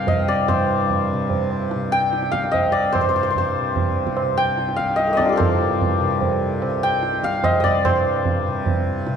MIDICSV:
0, 0, Header, 1, 4, 480
1, 0, Start_track
1, 0, Tempo, 408998
1, 563, Time_signature, 3, 2, 24, 8
1, 10756, End_track
2, 0, Start_track
2, 0, Title_t, "Santur"
2, 0, Program_c, 0, 15
2, 0, Note_on_c, 0, 72, 70
2, 0, Note_on_c, 0, 74, 79
2, 0, Note_on_c, 0, 77, 84
2, 0, Note_on_c, 0, 79, 87
2, 92, Note_on_c, 0, 75, 66
2, 162, Note_off_c, 0, 74, 0
2, 333, Note_on_c, 0, 74, 72
2, 403, Note_off_c, 0, 75, 0
2, 566, Note_off_c, 0, 72, 0
2, 570, Note_on_c, 0, 72, 69
2, 1807, Note_off_c, 0, 79, 0
2, 2254, Note_on_c, 0, 79, 90
2, 2454, Note_off_c, 0, 77, 0
2, 2717, Note_on_c, 0, 77, 81
2, 2952, Note_on_c, 0, 75, 75
2, 3022, Note_off_c, 0, 74, 0
2, 3193, Note_on_c, 0, 74, 74
2, 3263, Note_off_c, 0, 75, 0
2, 3428, Note_off_c, 0, 72, 0
2, 3432, Note_on_c, 0, 72, 74
2, 3528, Note_off_c, 0, 72, 0
2, 3532, Note_on_c, 0, 72, 49
2, 3620, Note_off_c, 0, 72, 0
2, 3625, Note_on_c, 0, 72, 55
2, 3702, Note_off_c, 0, 72, 0
2, 3706, Note_on_c, 0, 72, 48
2, 3787, Note_off_c, 0, 72, 0
2, 3792, Note_on_c, 0, 72, 55
2, 3874, Note_off_c, 0, 72, 0
2, 3878, Note_on_c, 0, 72, 46
2, 3962, Note_off_c, 0, 72, 0
2, 3966, Note_on_c, 0, 72, 57
2, 4683, Note_off_c, 0, 79, 0
2, 5134, Note_on_c, 0, 79, 92
2, 5323, Note_off_c, 0, 77, 0
2, 5591, Note_on_c, 0, 77, 76
2, 5821, Note_on_c, 0, 75, 74
2, 5891, Note_off_c, 0, 74, 0
2, 5949, Note_on_c, 0, 57, 28
2, 5989, Note_on_c, 0, 58, 30
2, 6014, Note_off_c, 0, 75, 0
2, 6018, Note_on_c, 0, 75, 55
2, 6038, Note_on_c, 0, 60, 34
2, 6067, Note_on_c, 0, 74, 74
2, 6082, Note_on_c, 0, 62, 38
2, 6120, Note_on_c, 0, 63, 40
2, 6137, Note_off_c, 0, 75, 0
2, 6166, Note_on_c, 0, 65, 43
2, 6190, Note_off_c, 0, 57, 0
2, 6207, Note_on_c, 0, 67, 42
2, 6247, Note_on_c, 0, 69, 44
2, 6290, Note_on_c, 0, 70, 49
2, 6302, Note_off_c, 0, 72, 0
2, 6307, Note_on_c, 0, 72, 73
2, 6318, Note_off_c, 0, 58, 0
2, 7563, Note_off_c, 0, 79, 0
2, 8018, Note_on_c, 0, 79, 90
2, 8197, Note_off_c, 0, 77, 0
2, 8498, Note_on_c, 0, 77, 89
2, 8733, Note_on_c, 0, 75, 82
2, 8803, Note_off_c, 0, 62, 0
2, 8803, Note_off_c, 0, 74, 0
2, 8915, Note_off_c, 0, 75, 0
2, 8919, Note_on_c, 0, 75, 64
2, 8964, Note_on_c, 0, 74, 84
2, 9034, Note_off_c, 0, 63, 0
2, 9034, Note_off_c, 0, 75, 0
2, 9207, Note_off_c, 0, 72, 0
2, 9212, Note_on_c, 0, 72, 81
2, 9614, Note_off_c, 0, 70, 0
2, 9703, Note_off_c, 0, 69, 0
2, 9888, Note_off_c, 0, 67, 0
2, 10116, Note_off_c, 0, 65, 0
2, 10447, Note_off_c, 0, 79, 0
2, 10732, Note_off_c, 0, 60, 0
2, 10756, Note_off_c, 0, 72, 0
2, 10756, Note_off_c, 0, 74, 0
2, 10756, Note_off_c, 0, 77, 0
2, 10756, End_track
3, 0, Start_track
3, 0, Title_t, "Tanpura"
3, 0, Program_c, 1, 104
3, 0, Note_on_c, 1, 36, 49
3, 0, Note_on_c, 1, 43, 51
3, 0, Note_on_c, 1, 48, 53
3, 585, Note_off_c, 1, 43, 0
3, 590, Note_on_c, 1, 43, 54
3, 1325, Note_off_c, 1, 48, 0
3, 1325, Note_on_c, 1, 48, 53
3, 2055, Note_off_c, 1, 48, 0
3, 2055, Note_on_c, 1, 48, 52
3, 2765, Note_off_c, 1, 36, 0
3, 2770, Note_on_c, 1, 36, 47
3, 3490, Note_off_c, 1, 43, 0
3, 3495, Note_on_c, 1, 43, 56
3, 4232, Note_off_c, 1, 48, 0
3, 4232, Note_on_c, 1, 48, 49
3, 4956, Note_off_c, 1, 48, 0
3, 4956, Note_on_c, 1, 48, 50
3, 5669, Note_off_c, 1, 36, 0
3, 5674, Note_on_c, 1, 36, 51
3, 6332, Note_off_c, 1, 43, 0
3, 6337, Note_on_c, 1, 43, 56
3, 7052, Note_off_c, 1, 48, 0
3, 7052, Note_on_c, 1, 48, 54
3, 7777, Note_off_c, 1, 48, 0
3, 7777, Note_on_c, 1, 48, 57
3, 8497, Note_off_c, 1, 36, 0
3, 8502, Note_on_c, 1, 36, 51
3, 9198, Note_off_c, 1, 43, 0
3, 9202, Note_on_c, 1, 43, 60
3, 9939, Note_off_c, 1, 48, 0
3, 9939, Note_on_c, 1, 48, 60
3, 10657, Note_off_c, 1, 48, 0
3, 10657, Note_on_c, 1, 48, 58
3, 10756, Note_off_c, 1, 36, 0
3, 10756, Note_off_c, 1, 43, 0
3, 10756, Note_off_c, 1, 48, 0
3, 10756, End_track
4, 0, Start_track
4, 0, Title_t, "Tabla"
4, 81, Note_on_c, 9, 63, 73
4, 81, Note_on_c, 9, 64, 68
4, 199, Note_off_c, 9, 63, 0
4, 199, Note_off_c, 9, 64, 0
4, 567, Note_on_c, 9, 60, 94
4, 567, Note_on_c, 9, 64, 78
4, 684, Note_off_c, 9, 60, 0
4, 684, Note_off_c, 9, 64, 0
4, 1050, Note_on_c, 9, 63, 70
4, 1050, Note_on_c, 9, 64, 63
4, 1167, Note_off_c, 9, 63, 0
4, 1167, Note_off_c, 9, 64, 0
4, 1523, Note_on_c, 9, 63, 73
4, 1523, Note_on_c, 9, 64, 65
4, 1641, Note_off_c, 9, 63, 0
4, 1641, Note_off_c, 9, 64, 0
4, 1772, Note_on_c, 9, 60, 47
4, 1889, Note_off_c, 9, 60, 0
4, 2009, Note_on_c, 9, 62, 74
4, 2126, Note_off_c, 9, 62, 0
4, 2250, Note_on_c, 9, 62, 58
4, 2368, Note_off_c, 9, 62, 0
4, 2498, Note_on_c, 9, 62, 71
4, 2612, Note_off_c, 9, 62, 0
4, 2612, Note_on_c, 9, 62, 54
4, 2729, Note_off_c, 9, 62, 0
4, 2739, Note_on_c, 9, 37, 53
4, 2856, Note_off_c, 9, 37, 0
4, 2862, Note_on_c, 9, 62, 57
4, 2979, Note_off_c, 9, 62, 0
4, 2979, Note_on_c, 9, 63, 74
4, 2979, Note_on_c, 9, 64, 61
4, 3097, Note_off_c, 9, 63, 0
4, 3097, Note_off_c, 9, 64, 0
4, 3462, Note_on_c, 9, 60, 89
4, 3462, Note_on_c, 9, 64, 75
4, 3579, Note_off_c, 9, 60, 0
4, 3579, Note_off_c, 9, 64, 0
4, 3934, Note_on_c, 9, 63, 74
4, 3934, Note_on_c, 9, 64, 58
4, 4051, Note_off_c, 9, 63, 0
4, 4051, Note_off_c, 9, 64, 0
4, 4411, Note_on_c, 9, 63, 69
4, 4411, Note_on_c, 9, 64, 63
4, 4529, Note_off_c, 9, 63, 0
4, 4529, Note_off_c, 9, 64, 0
4, 4650, Note_on_c, 9, 60, 50
4, 4767, Note_off_c, 9, 60, 0
4, 4772, Note_on_c, 9, 37, 52
4, 4889, Note_off_c, 9, 37, 0
4, 4890, Note_on_c, 9, 60, 70
4, 5007, Note_off_c, 9, 60, 0
4, 5131, Note_on_c, 9, 60, 55
4, 5248, Note_off_c, 9, 60, 0
4, 5373, Note_on_c, 9, 62, 68
4, 5490, Note_off_c, 9, 62, 0
4, 5501, Note_on_c, 9, 62, 59
4, 5618, Note_off_c, 9, 62, 0
4, 5624, Note_on_c, 9, 37, 53
4, 5742, Note_off_c, 9, 37, 0
4, 5747, Note_on_c, 9, 62, 52
4, 5862, Note_off_c, 9, 62, 0
4, 5862, Note_on_c, 9, 62, 74
4, 5979, Note_off_c, 9, 62, 0
4, 5979, Note_on_c, 9, 62, 56
4, 6096, Note_off_c, 9, 62, 0
4, 6098, Note_on_c, 9, 37, 49
4, 6216, Note_off_c, 9, 37, 0
4, 6216, Note_on_c, 9, 62, 55
4, 6333, Note_off_c, 9, 62, 0
4, 6337, Note_on_c, 9, 60, 94
4, 6337, Note_on_c, 9, 64, 84
4, 6454, Note_off_c, 9, 60, 0
4, 6454, Note_off_c, 9, 64, 0
4, 6817, Note_on_c, 9, 63, 70
4, 6817, Note_on_c, 9, 64, 63
4, 6934, Note_off_c, 9, 63, 0
4, 6934, Note_off_c, 9, 64, 0
4, 7292, Note_on_c, 9, 63, 77
4, 7292, Note_on_c, 9, 64, 69
4, 7410, Note_off_c, 9, 63, 0
4, 7410, Note_off_c, 9, 64, 0
4, 7770, Note_on_c, 9, 60, 78
4, 7888, Note_off_c, 9, 60, 0
4, 8248, Note_on_c, 9, 62, 77
4, 8365, Note_off_c, 9, 62, 0
4, 8371, Note_on_c, 9, 62, 57
4, 8488, Note_off_c, 9, 62, 0
4, 8491, Note_on_c, 9, 37, 60
4, 8606, Note_on_c, 9, 62, 61
4, 8608, Note_off_c, 9, 37, 0
4, 8723, Note_off_c, 9, 62, 0
4, 8727, Note_on_c, 9, 60, 82
4, 8727, Note_on_c, 9, 64, 68
4, 8844, Note_off_c, 9, 60, 0
4, 8844, Note_off_c, 9, 64, 0
4, 8975, Note_on_c, 9, 64, 47
4, 9092, Note_off_c, 9, 64, 0
4, 9213, Note_on_c, 9, 60, 107
4, 9213, Note_on_c, 9, 64, 90
4, 9330, Note_off_c, 9, 60, 0
4, 9330, Note_off_c, 9, 64, 0
4, 9685, Note_on_c, 9, 63, 76
4, 9685, Note_on_c, 9, 64, 66
4, 9802, Note_off_c, 9, 63, 0
4, 9802, Note_off_c, 9, 64, 0
4, 10163, Note_on_c, 9, 63, 77
4, 10163, Note_on_c, 9, 64, 71
4, 10280, Note_off_c, 9, 63, 0
4, 10280, Note_off_c, 9, 64, 0
4, 10639, Note_on_c, 9, 62, 76
4, 10756, Note_off_c, 9, 62, 0
4, 10756, End_track
0, 0, End_of_file